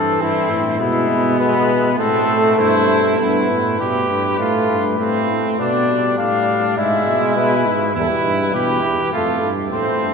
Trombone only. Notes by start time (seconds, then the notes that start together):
Already playing: E3
0.80 G#3
1.98 A3
3.19 B3
3.80 G3
4.40 A3
4.99 A3
5.59 B3
5.89 G3
6.78 G#3
7.95 G3
8.54 E3
9.14 A3
9.74 A3